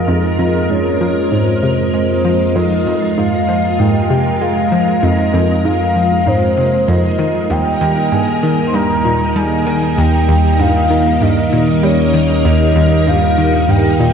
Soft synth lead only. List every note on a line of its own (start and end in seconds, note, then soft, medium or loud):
0.08 0.72 D#5 loud
0.70 1.33 C#5 medium
1.32 1.93 C5 medium
1.94 2.57 C5 medium
2.56 3.19 D#5 loud
3.18 3.81 F5 medium
3.80 4.43 G5 loud
4.41 5.05 F5 loud
5.03 5.67 D#5 loud
5.65 6.29 F5 loud
6.27 6.90 C5 medium
6.89 7.52 D#5 loud
7.51 8.14 G5 loud
8.12 8.67 G#5 loud
8.67 8.76 C6 medium
8.74 9.38 A#5 loud
9.37 10.00 G#5 loud
9.98 10.62 G5 loud
10.60 11.23 F5 loud
11.22 11.84 D#5 loud
11.84 12.47 C#5 medium
12.46 13.09 D#5 loud
13.08 13.71 F5 loud
13.69 14.13 G5 loud